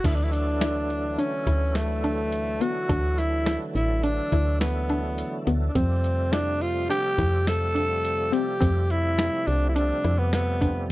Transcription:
0.04 1.17 D2 medium
0.04 5.71 D3 soft
0.04 5.71 E3 soft
0.04 5.72 F#3 soft
0.04 5.72 A3 medium
0.04 0.35 D4 medium
0.04 0.17 E4 medium
0.04 kick medium
0.04 closed hi-hat medium
0.04 crash medium
0.15 0.25 D4 medium
0.24 0.33 E4 medium
0.32 1.20 D4 medium
0.32 closed hi-hat medium
0.61 0.91 E4 medium
0.61 snare medium
0.61 closed hi-hat medium
0.90 closed hi-hat soft
1.18 1.77 C#4 medium
1.18 1.33 D4 medium
1.18 closed hi-hat medium
1.47 2.60 D2 medium
1.47 1.77 E4 medium
1.47 kick medium
1.47 closed hi-hat soft
1.75 2.63 A3 medium
1.75 snare medium
1.75 closed hi-hat medium
2.04 2.34 D4 medium
2.04 closed hi-hat soft
2.32 closed hi-hat medium
2.61 2.76 B3 medium
2.61 3.20 F#4 medium
2.61 closed hi-hat medium
2.89 3.58 D2 medium
2.89 3.19 D4 medium
2.89 kick medium
2.89 closed hi-hat medium
3.18 3.59 E4 medium
3.18 snare soft
3.18 closed hi-hat soft
3.46 3.76 E4 medium
3.46 snare medium
3.46 closed hi-hat medium
3.75 4.21 A1 medium
3.75 4.05 E4 medium
3.75 closed hi-hat soft
4.03 4.60 D4 medium
4.03 4.19 D4 medium
4.03 closed hi-hat medium
4.32 5.23 D2 medium
4.32 4.63 E4 medium
4.32 kick medium
4.32 closed hi-hat soft
4.61 5.43 B3 medium
4.61 snare medium
4.61 closed hi-hat medium
4.90 5.20 D4 medium
4.90 closed hi-hat medium
5.18 closed hi-hat medium
5.47 5.70 D2 loud
5.47 5.62 B3 medium
5.47 closed hi-hat medium
5.68 5.77 D4 medium
5.75 6.89 F2 loud
5.75 10.92 C3 medium
5.75 10.92 F3 soft
5.75 10.92 G3 soft
5.75 10.92 A3 medium
5.75 6.34 C4 medium
5.75 6.05 C4 medium
5.75 kick medium
5.75 closed hi-hat medium
6.04 closed hi-hat medium
6.32 6.63 D4 medium
6.32 6.62 E4 medium
6.32 snare loud
6.32 closed hi-hat medium
6.61 6.90 F4 medium
6.61 closed hi-hat soft
6.90 7.05 D4 medium
6.90 7.49 G4 medium
6.90 snare soft
6.90 closed hi-hat medium
7.18 8.32 F2 medium
7.18 7.48 E4 medium
7.18 kick medium
7.18 closed hi-hat soft
7.47 8.35 A4 medium
7.47 snare medium
7.47 closed hi-hat medium
7.75 8.05 D4 medium
7.75 closed hi-hat soft
8.05 closed hi-hat medium
8.32 8.47 C4 medium
8.32 8.93 G4 medium
8.32 closed hi-hat soft
8.61 9.30 F2 medium
8.61 8.91 C4 medium
8.61 kick loud
8.61 closed hi-hat medium
8.90 9.49 E4 medium
8.90 closed hi-hat soft
9.18 9.48 E4 medium
9.18 snare medium
9.18 closed hi-hat medium
9.47 9.93 C2 medium
9.47 9.69 D4 medium
9.47 closed hi-hat soft
9.69 9.77 E4 medium
9.75 10.20 D4 medium
9.75 9.91 D4 medium
9.75 closed hi-hat medium
10.04 10.92 F2 medium
10.04 10.34 E4 medium
10.04 closed hi-hat medium
10.19 10.33 B3 medium
10.33 10.87 B3 medium
10.33 snare medium
10.33 closed hi-hat medium
10.61 10.91 D4 medium
10.61 kick medium
10.61 closed hi-hat medium

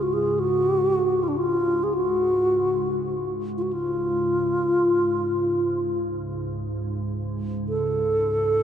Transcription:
0.00 3.63 C#2 medium
0.00 3.63 G#2 medium
0.00 0.15 F#4 medium
0.13 0.41 G#4 medium
0.40 1.25 F#4 medium
1.23 1.30 F4 medium
1.28 1.39 D4 medium
1.37 1.85 F4 medium
1.83 1.96 G#4 medium
1.94 3.31 F#4 medium
3.58 3.64 F4 medium
3.62 8.63 C#2 medium
3.62 8.63 G#2 medium
3.62 3.74 F#4 soft
3.73 5.98 F4 medium
7.69 8.63 A4 medium

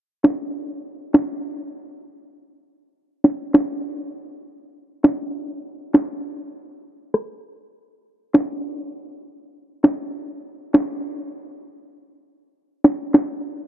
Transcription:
0.24 snare loud
0.24 clap medium
1.14 snare loud
1.14 clap medium
3.24 snare medium
3.54 snare loud
3.54 clap medium
5.04 snare loud
5.04 clap medium
5.94 snare loud
5.94 clap medium
7.14 cross-stick medium
8.34 snare loud
8.34 clap medium
9.84 snare loud
9.84 clap medium
10.74 snare loud
10.74 clap medium
12.84 snare medium
13.14 snare loud
13.14 clap medium

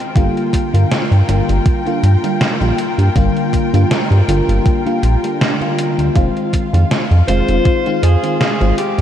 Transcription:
0.00 6.12 F4 medium
0.00 6.12 A#4 medium
0.00 6.12 G5 medium
0.15 0.29 G1 loud
0.15 0.68 D3 medium
0.15 0.68 G3 medium
0.15 0.69 A#3 medium
0.15 0.69 F4 loud
0.15 kick loud
0.15 closed hi-hat medium
0.37 closed hi-hat soft
0.53 kick medium
0.53 closed hi-hat medium
0.72 0.85 G2 medium
0.72 0.85 D3 medium
0.72 0.85 G3 medium
0.72 0.86 A#3 medium
0.72 0.86 F4 medium
0.72 closed hi-hat soft
0.91 snare loud
0.91 closed hi-hat medium
1.11 1.22 G2 loud
1.11 closed hi-hat soft
1.27 1.41 G1 medium
1.27 1.81 D3 medium
1.27 1.81 G3 medium
1.27 1.81 A#3 medium
1.27 1.82 F4 loud
1.27 closed hi-hat medium
1.49 1.60 G1 loud
1.49 closed hi-hat medium
1.66 kick loud
1.66 closed hi-hat medium
1.86 1.98 D3 medium
1.86 1.98 G3 medium
1.86 1.99 A#3 medium
1.86 1.99 F4 loud
1.86 closed hi-hat soft
2.03 2.16 G2 medium
2.03 closed hi-hat medium
2.23 2.36 D3 medium
2.23 2.36 G3 medium
2.23 2.36 A#3 medium
2.23 2.36 F4 medium
2.23 closed hi-hat medium
2.41 snare loud
2.41 closed hi-hat soft
2.61 2.72 A#1 loud
2.61 2.73 D3 medium
2.61 2.74 G3 medium
2.61 2.74 A#3 medium
2.61 2.74 F4 medium
2.61 closed hi-hat soft
2.78 closed hi-hat medium
2.98 3.09 G2 medium
2.98 closed hi-hat medium
3.15 3.29 G1 loud
3.15 3.68 D3 medium
3.15 3.69 G3 medium
3.15 3.69 A#3 medium
3.15 3.69 F4 loud
3.15 kick loud
3.15 closed hi-hat medium
3.37 closed hi-hat soft
3.53 kick medium
3.53 closed hi-hat medium
3.73 3.85 G2 medium
3.73 3.86 D3 medium
3.73 3.86 G3 medium
3.73 3.86 A#3 medium
3.73 3.86 F4 medium
3.73 closed hi-hat medium
3.91 snare loud
3.91 closed hi-hat medium
4.11 4.22 G2 loud
4.11 closed hi-hat soft
4.28 4.42 G1 medium
4.28 4.81 D3 medium
4.28 4.81 G3 medium
4.28 4.82 A#3 medium
4.28 4.82 F4 loud
4.28 closed hi-hat medium
4.48 4.60 G1 medium
4.48 closed hi-hat soft
4.66 kick loud
4.66 closed hi-hat soft
4.85 4.98 D3 medium
4.85 4.98 G3 medium
4.85 4.99 A#3 medium
4.85 4.99 F4 loud
4.85 closed hi-hat soft
5.03 5.16 A#1 loud
5.03 closed hi-hat medium
5.23 5.56 D3 medium
5.23 5.56 G3 medium
5.23 5.56 A#3 medium
5.23 5.57 D4 medium
5.23 closed hi-hat medium
5.41 snare loud
5.41 closed hi-hat soft
5.60 6.11 D3 medium
5.60 6.11 G3 medium
5.60 6.11 A#3 medium
5.60 6.12 F4 medium
5.60 closed hi-hat soft
5.79 closed hi-hat medium
5.98 6.10 D2 medium
5.98 closed hi-hat soft
6.15 6.29 F1 loud
6.15 6.68 D#3 medium
6.15 6.69 G#3 medium
6.15 6.69 C4 medium
6.15 9.01 F4 medium
6.15 6.69 F4 loud
6.15 9.01 F5 medium
6.15 kick loud
6.15 closed hi-hat soft
6.37 closed hi-hat soft
6.53 kick medium
6.53 closed hi-hat medium
6.73 6.84 F2 medium
6.73 6.86 D#3 medium
6.73 6.86 G#3 medium
6.73 6.86 C4 medium
6.73 6.86 F4 medium
6.73 closed hi-hat soft
6.91 snare loud
6.91 closed hi-hat soft
7.11 7.22 F2 loud
7.11 closed hi-hat soft
7.27 7.41 F1 medium
7.27 7.81 D#3 medium
7.27 7.81 G#3 medium
7.27 7.81 C4 medium
7.27 7.82 F4 loud
7.27 8.05 C5 loud
7.27 closed hi-hat medium
7.48 7.60 F1 medium
7.48 closed hi-hat soft
7.65 kick loud
7.65 closed hi-hat soft
7.86 7.98 D#3 medium
7.86 7.98 G#3 medium
7.86 7.99 C4 medium
7.86 7.99 F4 loud
7.86 closed hi-hat soft
8.03 8.16 F2 medium
8.03 8.40 G#4 medium
8.03 closed hi-hat medium
8.23 8.36 D#3 medium
8.23 8.36 G#3 medium
8.23 8.36 C4 medium
8.23 8.36 F4 medium
8.23 closed hi-hat soft
8.40 8.75 G#4 medium
8.40 snare loud
8.40 closed hi-hat soft
8.60 8.72 G#1 loud
8.60 8.73 D#3 medium
8.60 8.73 G#3 medium
8.60 8.73 C4 medium
8.60 8.73 F4 medium
8.60 closed hi-hat soft
8.78 9.01 G4 medium
8.78 closed hi-hat medium
8.98 9.01 F2 medium

